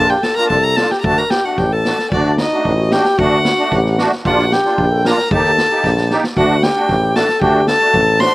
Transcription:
Already playing: A#1 A#3 D4 F4 A5
0.08 G4 G5, snare
0.22 A4 A5, snare
0.36 A#3 D4 F4 A#4 A#5, snare
0.49 C2 A4 A5, kick, snare
0.64 A#5
0.76 A#3 D4 F4 A4 A5, snare
0.91 G4 G5, snare
1.00 D2 A#5, kick
1.04 A3 D4 F#4 A4 A5
1.17 A#4 A#5, snare
1.30 G4 G5, snare
1.44 A3 D4 F#4 F#5
1.57 A1 G4 G5, kick, snare
1.72 A4 A5
1.85 A3 D4 F#4, snare
1.99 snare
2.11 D2 A3 D4 F#4 D5, kick
2.38 D#4 D#5, snare
2.52 A3 D4 F#4
2.65 A1, kick
2.78 F#4
2.91 A3 D4 F#4 G4 G5, snare
3.05 snare
3.17 D2 A3 D4 F#4 F#5, kick
3.45 snare
3.58 A3 D4 F#4
3.71 A1 G4, kick, snare
3.86 snare
3.98 A3 D4 F#4, snare
4.12 snare
4.25 A#1 A#3 D4 F4 F#4 F#5, kick
4.39 snare
4.52 G4 G5, snare
4.65 A#3 D4 F4, snare
4.78 A#1, kick
4.91 A4
5.05 A#3 D4 F4 A#4 A#5, snare
5.18 snare
5.31 D#2 A#3 D#4 G4 A4 A5, kick
5.45 snare
5.58 snare
5.71 A#3 D#4 G4
5.84 A#1, kick, snare
5.97 snare
6.10 A#3 D#4 G4, snare
6.24 snare
6.36 D2 A3 D4 F#4 F#5, kick
6.63 G4 G5, snare
6.75 A3 D4 F#4
6.89 A1, kick, snare
7.04 G4
7.15 A3 D4 F#4 A4 A5, snare
7.29 snare
7.41 D2 A3 D4 F#4 G4 G5, kick
7.67 A4 A5, snare
7.81 A3 D4 F#4, snare
7.93 A1, kick
8.20 A3 D4 F#4 C5 C6, snare

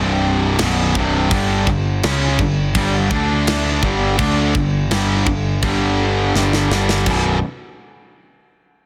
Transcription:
Already playing: C1 C2 G2 C3
0.59 B0 B1 F#2 B2, snare, crash
0.95 C1 C2 G2 C3, kick
1.31 G1 G2 D3 G3, kick, crash
1.67 G1 G2 D3, kick
2.03 C#2 C#3 G#3 C#4, snare, crash
2.39 G1 G2 D3, kick
2.75 G1 G2 D3 G3, kick, crash
3.11 D2 D3 A3 D4, kick
3.47 snare, crash
3.83 G1 G2 D3 G3, kick
4.18 D2 D3 A3 D4, kick, crash
4.55 G1 G2 D3, kick
4.90 G1 G2 D3 G3, snare, crash
5.27 G1 G2 D3, kick
5.62 G1 G2 D3 G3, kick, crash
6.35 G1 G2 D3 G3, snare
6.53 snare
6.70 G1 G2 D3 G3, snare
6.89 snare
7.06 B0 B1 F#2 B2, kick, crash

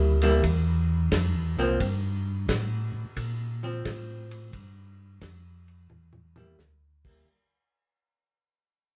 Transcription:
Already playing: D2 G3 A#3 E4
0.22 G3 A#3 E4, ride
0.43 E2, kick, ride
1.12 F2, kick, snare, hi-hat pedal, ride
1.34 E2
1.57 C2 F3 A#3 C4
1.80 G2, kick, ride
2.48 A2, kick, snare, hi-hat pedal, ride
2.94 A2
3.17 A#2, kick, ride
3.63 F3 C4
3.85 A2, kick, snare, hi-hat pedal, ride
4.31 ride
4.53 G2, kick, ride
5.21 F2, kick, snare, hi-hat pedal, ride
5.68 ride
5.90 E2, mid tom
6.13 mid tom
6.36 G3 A#3 E4, mid tom
6.58 D2, snare, hi-hat pedal
7.05 G3 A#3 E4, kick, crash

